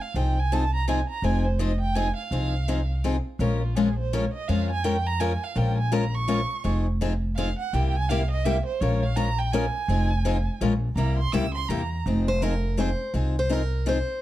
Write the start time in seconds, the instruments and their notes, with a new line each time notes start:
0.01 violin F5
0.14 upright bass C2, steel-string acoustic guitar F3 C4 D#4 G#4, violin G5
0.39 violin G#5
0.52 steel-string acoustic guitar F3 C4 D#4 G#4, violin A5
0.74 violin A#5
0.88 steel-string acoustic guitar F3 C4 D#4 G#4, violin G#5
1.10 violin A#5
1.22 upright bass F1, steel-string acoustic guitar F3 C4 D#4 G#4, violin G#5
1.45 violin C5
1.59 steel-string acoustic guitar F3 C4 D#4 G#4, violin D#5
1.81 violin G5
1.95 steel-string acoustic guitar F3 C4 D#4 G#4, violin G#5
2.16 violin F5
2.31 upright bass C2, steel-string acoustic guitar F3 C4 D#4 G#4
2.68 steel-string acoustic guitar F3 C4 D#4 G#4
3.04 steel-string acoustic guitar F3 C4 D#4 G#4
3.39 upright bass A#1, steel-string acoustic guitar F3 G#3 C#4 F4 A#4, violin C#5
3.63 violin F4
3.76 steel-string acoustic guitar F3 G#3 C#4 F4 A#4, violin G#4
3.99 violin C5
4.13 steel-string acoustic guitar F3 G#3 C#4 F4 A#4, violin C#5
4.34 violin D#5
4.48 upright bass F2, steel-string acoustic guitar F3 G#3 C#4 F4 A#4, violin F5
4.71 violin G#5
4.84 steel-string acoustic guitar F3 G#3 C#4 F4 A#4, violin G5
5.06 violin A#5
5.20 steel-string acoustic guitar F3 G#3 C#4 F4 A#4, violin G#5
5.44 violin F5
5.56 upright bass A#1, steel-string acoustic guitar F3 G#3 C#4 F4 A#4, violin G5
5.78 violin G#5
5.92 steel-string acoustic guitar F3 G#3 C#4 F4 A#4, violin A#5
6.15 violin C#6
6.28 steel-string acoustic guitar F3 G#3 C#4 F4 A#4
6.64 upright bass F1, steel-string acoustic guitar F3 C4 D#4 G#4
7.01 steel-string acoustic guitar F3 C4 D#4 G#4
7.36 steel-string acoustic guitar F3 C4 D#4 G#4, violin F5
7.59 violin F#5
7.73 upright bass C2, steel-string acoustic guitar C3 G3 A#3 E4 G4, violin G5
7.96 violin G#5
8.09 steel-string acoustic guitar C3 G3 A#3 E4 G4, violin F5
8.31 violin D#5
8.45 steel-string acoustic guitar C3 G3 A#3 E4 G4, violin E5
8.66 violin C5
8.81 upright bass A#1, steel-string acoustic guitar F3 G#3 C#4 F4 A#4, violin C#5
9.03 violin F5
9.16 steel-string acoustic guitar F3 G#3 C#4 F4 A#4, violin A#5
9.38 violin G5
9.52 steel-string acoustic guitar F3 G#3 C#4 F4 A#4, violin G#5
9.88 upright bass F1, steel-string acoustic guitar F3 C4 D#4 G#4
10.25 steel-string acoustic guitar F3 C4 D#4 G#4
10.61 upright bass A#1, steel-string acoustic guitar F3 G#3 C#4 F4 A#4
10.96 upright bass C2, steel-string acoustic guitar C3 G3 A#3 E4 G4, violin A#5
11.18 violin C6
11.32 upright bass C#2, steel-string acoustic guitar C3 G3 A#3 E4 G4, violin E6
11.54 violin C6
11.69 upright bass E2, steel-string acoustic guitar C3 G3 A#3 E4 G4, violin A#5
12.06 upright bass F1, steel-string acoustic guitar F3 C4 D#4 G#4
12.28 steel-string acoustic guitar C5
12.42 steel-string acoustic guitar F3 C4 D#4 G#4 A#4
12.77 steel-string acoustic guitar F3 C4 D#4 G#4 C5
13.14 upright bass C2, steel-string acoustic guitar F3 C4 D#4 G#4
13.39 steel-string acoustic guitar C5
13.49 steel-string acoustic guitar F3 C4 D#4 G#4 A#4
13.86 steel-string acoustic guitar F3 C4 D#4 G#4 C5